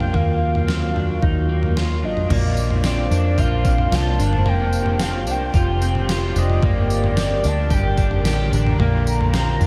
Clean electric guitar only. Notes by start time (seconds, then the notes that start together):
Already playing: D4
0.13 A#3
0.67 C4
0.94 D4
1.22 D#4
1.49 A#3
1.76 F4
2.03 D4
2.30 A#3
2.84 C4
3.11 D4
3.38 F4
3.65 C4
3.93 F4
4.19 D4
4.46 A#3
5.00 C4
5.28 D4
5.55 F4
5.82 C4
6.09 F4
6.35 D4
6.63 A#3
7.16 C4
7.43 D4
7.71 G4
7.97 D4
8.24 G4
8.51 D4
8.79 A#3
9.33 C4
9.60 D4